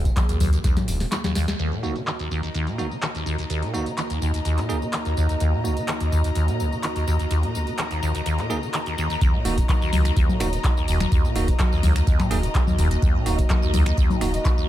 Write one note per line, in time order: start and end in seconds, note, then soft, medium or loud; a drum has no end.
0.00 0.10 D#1 medium
0.00 1.55 D#3 medium
0.00 1.55 A#3 medium
0.00 1.55 F#4 medium
0.00 1.58 G#4 medium
0.05 0.11 D#3 medium
0.05 kick medium
0.05 closed hi-hat soft
0.05 tambourine soft
0.17 0.21 D#3 medium
0.17 kick loud
0.17 clap loud
0.17 closed hi-hat medium
0.17 tambourine soft
0.17 low conga medium
0.29 0.38 D#2 medium
0.29 closed hi-hat medium
0.29 tambourine soft
0.40 0.58 C#2 medium
0.40 0.51 D#2 loud
0.40 open hi-hat loud
0.40 tambourine medium
0.40 low conga medium
0.53 0.59 D#2 medium
0.53 closed hi-hat medium
0.53 tambourine soft
0.64 0.78 D#2 loud
0.64 kick loud
0.64 snare medium
0.64 closed hi-hat medium
0.64 tambourine soft
0.77 0.89 A#2 medium
0.77 snare medium
0.77 closed hi-hat soft
0.77 tambourine soft
0.77 low conga medium
0.88 1.05 D#1 medium
0.88 1.02 C#2 loud
0.88 open hi-hat loud
0.88 tambourine medium
1.00 1.07 D#3 medium
1.00 snare medium
1.00 open hi-hat medium
1.00 tambourine soft
1.12 1.16 D#3 medium
1.12 snare medium
1.12 clap loud
1.12 closed hi-hat medium
1.12 tambourine soft
1.24 1.34 D#2 medium
1.24 snare medium
1.24 closed hi-hat soft
1.24 tambourine soft
1.24 low conga medium
1.35 1.46 D#2 loud
1.35 snare medium
1.35 open hi-hat medium
1.35 tambourine medium
1.48 1.54 D#2 medium
1.48 snare medium
1.48 closed hi-hat soft
1.48 tambourine soft
1.59 1.73 D#2 loud
1.59 9.17 A#3 medium
1.59 9.17 D#4 medium
1.59 14.69 F#4 medium
1.59 9.17 F#4 medium
1.59 9.17 D#5 medium
1.59 closed hi-hat medium
1.59 tambourine soft
1.72 1.85 A#2 medium
1.83 1.97 C#2 loud
1.83 1.94 A#3 medium
1.83 1.94 D#4 medium
1.83 1.94 F#4 medium
1.83 tambourine medium
1.96 2.02 D#3 medium
1.96 closed hi-hat soft
1.96 tambourine soft
2.07 2.11 D#3 medium
2.07 14.69 A#4 medium
2.07 clap loud
2.07 closed hi-hat medium
2.07 tambourine soft
2.19 2.29 D#2 medium
2.19 14.69 A#5 medium
2.19 closed hi-hat medium
2.19 tambourine soft
2.31 2.41 D#2 medium
2.31 tambourine medium
2.43 2.50 D#2 medium
2.43 closed hi-hat medium
2.43 tambourine soft
2.54 2.69 D#2 medium
2.54 closed hi-hat medium
2.54 tambourine soft
2.67 2.80 A#2 medium
2.67 14.69 D#5 medium
2.67 closed hi-hat soft
2.67 tambourine soft
2.78 2.93 C#2 loud
2.78 2.85 A#3 medium
2.78 2.85 D#4 medium
2.78 2.85 F#4 medium
2.78 tambourine medium
2.91 2.97 D#3 medium
2.91 tambourine soft
3.02 3.06 D#3 medium
3.02 clap loud
3.02 closed hi-hat medium
3.02 tambourine soft
3.15 3.24 D#2 medium
3.15 closed hi-hat soft
3.15 tambourine soft
3.26 3.36 D#2 loud
3.26 tambourine medium
3.38 3.45 D#2 medium
3.38 closed hi-hat soft
3.38 tambourine soft
3.50 3.64 D#2 loud
3.50 closed hi-hat medium
3.50 tambourine soft
3.62 3.75 A#2 medium
3.62 closed hi-hat soft
3.74 3.88 C#2 loud
3.74 3.85 A#3 medium
3.74 3.85 D#4 medium
3.74 3.85 F#4 loud
3.74 tambourine medium
3.86 3.92 D#3 medium
3.86 closed hi-hat soft
3.86 tambourine soft
3.98 4.02 D#3 medium
3.98 clap loud
3.98 closed hi-hat medium
3.98 tambourine soft
4.10 4.19 D#2 medium
4.10 closed hi-hat medium
4.10 tambourine soft
4.21 4.32 D#2 medium
4.21 tambourine medium
4.34 4.40 D#2 medium
4.34 closed hi-hat soft
4.34 tambourine soft
4.45 4.59 D#2 loud
4.45 closed hi-hat medium
4.45 tambourine soft
4.58 4.71 A#2 medium
4.58 clap soft
4.58 closed hi-hat soft
4.58 tambourine soft
4.69 4.83 C#2 loud
4.69 4.76 A#3 medium
4.69 4.76 D#4 medium
4.69 4.76 G#4 loud
4.69 tambourine medium
4.82 4.88 D#3 medium
4.82 tambourine soft
4.93 4.97 D#3 medium
4.93 clap loud
4.93 closed hi-hat medium
4.93 tambourine soft
5.05 5.15 D#2 medium
5.05 closed hi-hat soft
5.05 tambourine soft
5.17 5.27 D#2 loud
5.17 tambourine medium
5.29 5.35 D#2 medium
5.29 closed hi-hat soft
5.29 tambourine soft
5.40 5.54 D#2 loud
5.40 closed hi-hat medium
5.40 tambourine soft
5.53 5.66 A#2 medium
5.64 5.78 C#2 loud
5.64 5.75 A#3 medium
5.64 5.75 D#4 medium
5.64 5.75 F#4 medium
5.64 tambourine medium
5.77 5.83 D#3 medium
5.77 closed hi-hat soft
5.77 tambourine soft
5.88 5.92 D#3 medium
5.88 clap loud
5.88 closed hi-hat medium
5.88 tambourine soft
6.00 6.10 D#2 medium
6.00 closed hi-hat medium
6.00 tambourine soft
6.12 6.22 D#2 loud
6.12 tambourine medium
6.24 closed hi-hat medium
6.24 tambourine soft
6.35 6.49 D#2 loud
6.35 closed hi-hat medium
6.35 tambourine soft
6.48 6.61 A#2 medium
6.48 closed hi-hat soft
6.48 tambourine soft
6.59 6.73 C#2 loud
6.59 tambourine medium
6.72 6.78 D#3 medium
6.72 tambourine soft
6.83 6.87 D#3 medium
6.83 clap loud
6.83 closed hi-hat medium
6.83 tambourine soft
6.96 7.05 D#2 medium
6.96 closed hi-hat soft
6.96 tambourine soft
7.07 7.17 D#2 loud
7.07 tambourine medium
7.19 7.26 D#2 medium
7.19 closed hi-hat soft
7.19 tambourine soft
7.31 7.45 D#2 loud
7.31 closed hi-hat medium
7.31 tambourine soft
7.43 7.56 A#2 medium
7.43 closed hi-hat soft
7.55 7.69 C#2 loud
7.55 tambourine medium
7.67 7.73 D#3 medium
7.67 closed hi-hat soft
7.67 tambourine soft
7.78 7.83 D#3 medium
7.78 clap loud
7.78 closed hi-hat medium
7.78 tambourine soft
7.91 8.00 D#2 medium
7.91 closed hi-hat soft
7.91 tambourine soft
8.02 8.13 D#2 loud
8.02 tambourine medium
8.15 8.21 D#2 medium
8.15 closed hi-hat soft
8.15 tambourine soft
8.26 8.40 D#2 loud
8.26 closed hi-hat medium
8.26 tambourine soft
8.38 8.52 A#2 medium
8.38 clap soft
8.38 closed hi-hat soft
8.38 tambourine soft
8.50 8.64 C#2 loud
8.50 8.57 A#3 loud
8.50 8.57 D#4 medium
8.50 8.57 G#4 loud
8.50 tambourine medium
8.63 8.69 D#3 medium
8.63 tambourine soft
8.74 8.78 D#3 medium
8.74 clap loud
8.74 closed hi-hat medium
8.74 tambourine soft
8.86 8.96 D#2 medium
8.86 closed hi-hat soft
8.86 tambourine soft
8.98 9.08 D#2 loud
8.98 tambourine medium
9.10 9.16 D#2 medium
9.10 closed hi-hat soft
9.10 tambourine soft
9.21 9.35 D#2 loud
9.21 14.69 A#3 medium
9.21 14.69 D#4 medium
9.21 14.69 F#4 medium
9.21 14.69 D#5 medium
9.21 kick loud
9.21 closed hi-hat medium
9.21 tambourine soft
9.34 9.47 A#2 medium
9.45 9.62 D#1 loud
9.45 9.59 C#2 loud
9.45 9.56 A#3 medium
9.45 9.56 D#4 medium
9.45 9.56 F#4 medium
9.45 open hi-hat loud
9.45 tambourine medium
9.58 9.64 D#3 medium
9.58 kick medium
9.58 closed hi-hat medium
9.58 tambourine soft
9.69 9.73 D#3 medium
9.69 kick loud
9.69 clap loud
9.69 closed hi-hat medium
9.69 tambourine soft
9.69 low conga medium
9.81 9.91 D#2 medium
9.81 tambourine soft
9.93 10.10 C#2 medium
9.93 10.03 D#2 loud
9.93 open hi-hat medium
9.93 tambourine medium
9.93 low conga medium
10.05 10.11 D#2 medium
10.05 finger snap medium
10.05 closed hi-hat medium
10.05 tambourine soft
10.16 10.31 D#2 loud
10.16 kick loud
10.16 closed hi-hat medium
10.16 tambourine soft
10.29 10.42 A#2 medium
10.29 tambourine soft
10.29 low conga medium
10.40 10.58 D#1 medium
10.40 10.54 C#2 loud
10.40 10.47 A#3 medium
10.40 10.47 D#4 medium
10.40 10.47 F#4 loud
10.40 finger snap medium
10.40 open hi-hat loud
10.40 tambourine medium
10.53 10.59 D#3 medium
10.53 closed hi-hat medium
10.53 tambourine soft
10.64 10.68 D#3 medium
10.64 kick loud
10.64 clap loud
10.64 closed hi-hat medium
10.64 tambourine soft
10.77 10.86 D#2 medium
10.77 tambourine soft
10.88 11.05 D#1 medium
10.88 10.98 D#2 loud
10.88 open hi-hat medium
10.88 tambourine medium
11.00 11.07 D#2 medium
11.00 finger snap medium
11.00 closed hi-hat medium
11.00 tambourine soft
11.00 low conga medium
11.12 11.26 D#2 loud
11.12 kick loud
11.12 closed hi-hat medium
11.12 tambourine soft
11.24 11.37 A#2 medium
11.24 tambourine soft
11.35 11.53 D#1 loud
11.35 11.50 C#2 loud
11.35 11.47 A#3 medium
11.35 11.47 D#4 medium
11.35 11.47 F#4 medium
11.35 open hi-hat loud
11.35 tambourine medium
11.48 11.54 D#3 medium
11.48 kick medium
11.48 closed hi-hat medium
11.48 tambourine soft
11.59 11.64 D#3 medium
11.59 kick loud
11.59 clap loud
11.59 closed hi-hat medium
11.59 tambourine soft
11.59 low conga medium
11.72 11.81 D#2 medium
11.72 tambourine soft
11.83 12.01 C#2 medium
11.83 11.93 D#2 loud
11.83 open hi-hat loud
11.83 tambourine medium
11.83 low conga medium
11.96 12.02 D#2 medium
11.96 finger snap medium
11.96 closed hi-hat medium
11.96 tambourine soft
12.07 12.21 D#2 loud
12.07 kick loud
12.07 closed hi-hat medium
12.07 tambourine soft
12.19 12.32 A#2 medium
12.19 finger snap medium
12.19 clap soft
12.19 tambourine soft
12.19 low conga medium
12.31 12.48 D#1 medium
12.31 12.45 C#2 loud
12.31 12.38 A#3 loud
12.31 12.38 D#4 medium
12.31 12.38 G#4 loud
12.31 open hi-hat loud
12.31 tambourine medium
12.43 12.50 D#3 medium
12.43 closed hi-hat medium
12.43 tambourine soft
12.55 12.59 D#3 medium
12.55 kick loud
12.55 clap loud
12.55 closed hi-hat medium
12.55 tambourine soft
12.67 12.76 D#2 medium
12.67 tambourine soft
12.67 low conga medium
12.78 12.96 D#1 medium
12.78 12.89 D#2 loud
12.78 open hi-hat loud
12.78 tambourine medium
12.91 12.97 D#2 medium
12.91 closed hi-hat medium
12.91 tambourine soft
13.02 13.16 D#2 loud
13.02 kick loud
13.02 closed hi-hat medium
13.02 tambourine soft
13.15 13.28 A#2 medium
13.26 13.43 D#1 loud
13.26 13.40 C#2 loud
13.26 13.37 A#3 medium
13.26 13.37 D#4 medium
13.26 13.37 F#4 loud
13.26 open hi-hat loud
13.26 tambourine medium
13.39 13.45 D#3 medium
13.39 kick medium
13.39 closed hi-hat medium
13.39 tambourine soft
13.50 13.54 D#3 medium
13.50 kick loud
13.50 clap loud
13.50 closed hi-hat medium
13.50 tambourine soft
13.50 low conga medium
13.62 13.72 D#2 medium
13.62 tambourine soft
13.74 13.91 C#2 medium
13.74 13.84 D#2 loud
13.74 open hi-hat medium
13.74 tambourine medium
13.74 low conga medium
13.86 13.92 D#2 medium
13.86 finger snap medium
13.86 closed hi-hat medium
13.86 tambourine soft
13.97 14.12 D#2 loud
13.97 kick loud
13.97 closed hi-hat soft
13.97 tambourine soft
14.10 14.23 A#2 medium
14.10 tambourine soft
14.10 low conga loud
14.21 14.39 D#1 medium
14.21 14.35 C#2 loud
14.21 14.28 A#3 medium
14.21 14.28 D#4 medium
14.21 14.28 F#4 medium
14.21 finger snap medium
14.21 open hi-hat loud
14.21 tambourine medium
14.34 14.40 D#3 medium
14.34 closed hi-hat medium
14.34 tambourine soft
14.45 14.49 D#3 medium
14.45 kick loud
14.45 clap loud
14.45 closed hi-hat medium
14.45 tambourine soft
14.58 14.67 D#2 medium
14.58 tambourine soft